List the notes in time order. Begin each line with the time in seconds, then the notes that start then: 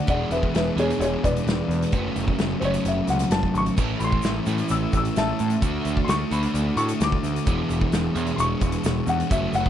0.07 E1 E2 B2 E3 G#3 B3 D4 G#4 D5 F#5, kick, closed hi-hat
0.30 E1 B4 E5, closed hi-hat
0.43 kick
0.54 E1 B4 E5, snare, closed hi-hat
0.76 E2 E3 B3 D4 G#4 C#5, closed hi-hat
0.90 closed hi-hat
0.99 E1 G#4 C#5, closed hi-hat
1.23 E1 B4 D5, kick, closed hi-hat
1.37 closed hi-hat
1.45 E1, snare, closed hi-hat
1.68 E2, snare, closed hi-hat
1.82 closed hi-hat
1.92 F#1 F#2 C#3 F#3 A3 C#4 F#4, kick, closed hi-hat
2.16 F#1, closed hi-hat
2.28 kick
2.39 F#1, snare, closed hi-hat
2.60 F#1 F#3 A3 C#4 F#4 C5, closed hi-hat
2.65 C#5
2.74 closed hi-hat
2.85 F#1 E5, closed hi-hat
3.08 C#2 F#5, closed hi-hat
3.19 closed hi-hat
3.30 F#1 A5, snare, closed hi-hat
3.43 kick
3.54 G#1 C#6, closed hi-hat
3.66 closed hi-hat
3.76 A1 A2 E3 A3 C#4 E4, kick, crash, shaker
4.00 A1 B5, closed hi-hat, shaker
4.04 C6
4.12 kick
4.22 A1, snare, closed hi-hat, shaker
4.46 A2 E3 A3 C#4 E4, closed hi-hat, shaker
4.58 closed hi-hat
4.69 A1 E6, closed hi-hat, shaker
4.93 A1, kick, closed hi-hat, shaker
4.97 E6
5.05 closed hi-hat
5.16 A1 E5 A5, snare, closed hi-hat, shaker
5.39 A2, closed hi-hat, shaker
5.50 closed hi-hat
5.62 D2 D3 A3 D4 F#4, kick, closed hi-hat, shaker
5.85 D2, closed hi-hat, shaker
5.97 kick
6.04 D2 C6, closed hi-hat
6.09 C#6, snare, shaker
6.31 D2 D3 A3 D4 F#4 B5, closed hi-hat, shaker
6.43 closed hi-hat
6.54 D2, closed hi-hat, shaker
6.76 A2 C#6, closed hi-hat, shaker
6.89 closed hi-hat
7.00 D2 D6, snare, closed hi-hat, shaker
7.12 kick
7.23 D2, snare, closed hi-hat, shaker
7.36 closed hi-hat
7.46 E1 E2 B2 E3 G#3 B3 D4 G#4, kick, closed hi-hat, shaker
7.70 E1, closed hi-hat, shaker
7.81 kick
7.92 E1, snare, closed hi-hat, shaker
8.15 E2 E3 B3 D4 G#4, closed hi-hat, shaker
8.27 closed hi-hat
8.36 E1 C6, closed hi-hat, shaker
8.40 C#6
8.61 E1, kick, closed hi-hat, shaker
8.72 closed hi-hat
8.84 E1, snare, closed hi-hat, shaker
9.07 E2 F#5, closed hi-hat, shaker
9.20 closed hi-hat
9.30 F#1 F#2 C#3 F#3 A3 C#4 F#4 E5, kick, closed hi-hat, shaker
9.53 F#1 F#5, closed hi-hat, shaker
9.66 kick